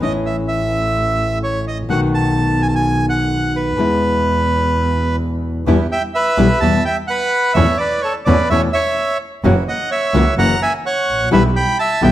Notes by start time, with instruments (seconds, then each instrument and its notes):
0.00 double bass A1, nylon-string guitar E3 A3 C#4 E4, bandoneon D#5
0.26 bandoneon E5
0.48 bandoneon E5
1.44 bandoneon C#5
1.68 bandoneon D#5
1.89 double bass B1, nylon-string guitar B2 D#3 A3 B3 F#4, bandoneon F#5
2.14 bandoneon A5
2.62 bandoneon G#5
2.68 bandoneon A5
2.75 bandoneon G#5
3.09 bandoneon F#5
3.56 bandoneon B4
3.77 double bass E2, nylon-string guitar B2 E3 G#3 B3 E4
5.66 double bass E2, nylon-string guitar B2 E3 G3 B3 E4, bandoneon B3 E4 G4
5.92 bandoneon E5 G5
6.14 bandoneon B4 E5
6.37 double bass B1, nylon-string guitar B2 E3 G3 B3 E4, bandoneon B3 E4 G4
6.60 double bass E2, nylon-string guitar B2 E3 G3 B3 E4, bandoneon B3 E4 G4 E5 A5
6.85 bandoneon E5 G5
7.07 bandoneon B4 F#5
7.54 double bass E2, nylon-string guitar B2 E3 A3 C#4 E4, bandoneon B3 C#4 A4 C#5 E5
7.77 bandoneon B4 D5
8.02 bandoneon A4 C#5
8.25 double bass E2, nylon-string guitar B2 E3 A3 C#4 E4, bandoneon B3 C#4 A4 B4 D5
8.50 double bass E2, nylon-string guitar B2 E3 A3 C#4 E4, bandoneon B3 C#4 A4 C#5 E5
8.73 bandoneon C#5 E5
9.44 double bass F#1, nylon-string guitar C#3 E3 A#3 C#4 F#4, bandoneon A#3 E4 F#4
9.68 bandoneon D#5 F#5
9.91 bandoneon C#5 E5
10.14 double bass C#2, nylon-string guitar C#3 E3 A#3 C#4 F#4, bandoneon A#3 E4 F#4
10.37 double bass F#1, nylon-string guitar C#3 E3 A#3 C#4 F#4, bandoneon A#3 E4 F#4 F#5 A#5
10.63 bandoneon E5 G#5
10.86 bandoneon C#5 F#5
11.08 double bass A1
11.31 double bass B1, nylon-string guitar B2 E3 G3 B3 E4, bandoneon B3 E4 G4 B4 E5
11.56 bandoneon G5 B5
11.79 bandoneon E5 A5
12.02 double bass B1, nylon-string guitar B2 E3 G3 B3 E4, bandoneon B3 E4 G4 E5 G5